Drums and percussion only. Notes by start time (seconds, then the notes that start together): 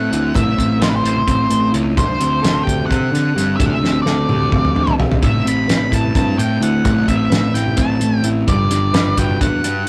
0.13 closed hi-hat
0.34 kick, closed hi-hat, high conga, low conga
0.58 kick, closed hi-hat, low conga
0.82 snare, closed hi-hat
0.93 low conga
1.05 closed hi-hat
1.16 high conga, low conga
1.27 kick, closed hi-hat, low conga
1.50 closed hi-hat, low conga
1.74 closed hi-hat
1.97 kick, closed hi-hat, high conga, low conga
2.21 closed hi-hat, low conga
2.44 snare, closed hi-hat
2.56 low conga
2.67 kick, closed hi-hat
2.79 high conga, low conga
2.91 kick, closed hi-hat, low conga
3.15 snare, closed hi-hat, low conga
3.38 snare, closed hi-hat
3.60 kick, closed hi-hat, high conga, low conga
3.72 low conga
3.85 snare
4.06 snare, low conga
4.29 high tom
4.42 high conga, low conga
4.52 kick, mid tom, low conga
4.65 mid tom, low conga
4.76 mid tom
4.87 floor tom
5.00 floor tom
5.12 floor tom
5.23 kick, closed hi-hat, high conga, low conga
5.47 closed hi-hat, low conga
5.69 snare, closed hi-hat
5.81 low conga
5.92 kick, closed hi-hat
6.04 high conga, low conga
6.15 kick, closed hi-hat, low conga
6.27 low conga
6.38 closed hi-hat, low conga
6.62 closed hi-hat
6.85 kick, closed hi-hat, high conga, low conga
7.08 kick, closed hi-hat, low conga
7.32 snare, closed hi-hat
7.45 low conga
7.55 snare, closed hi-hat
7.66 high conga, low conga
7.77 kick, closed hi-hat, low conga
7.90 low conga
8.01 closed hi-hat
8.24 closed hi-hat
8.48 kick, closed hi-hat, high conga, low conga
8.71 snare, closed hi-hat, low conga
8.94 snare, closed hi-hat
9.07 low conga
9.17 kick, closed hi-hat
9.30 high conga, low conga
9.41 kick, closed hi-hat, low conga
9.53 low conga
9.64 closed hi-hat